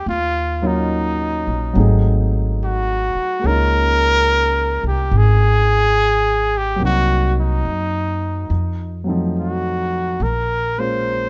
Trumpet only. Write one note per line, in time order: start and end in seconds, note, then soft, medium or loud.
0.09 0.68 F4 medium
0.67 2.33 D#4 medium
2.65 3.48 F#4 medium
3.47 4.85 A#4 loud
4.88 5.19 G4 medium
5.18 6.59 G#4 loud
6.58 6.84 G4 medium
6.85 7.35 F#4 medium
7.41 9.04 D#4 medium
9.40 10.24 F#4 medium
10.23 10.81 A#4 medium
10.79 11.29 C5 medium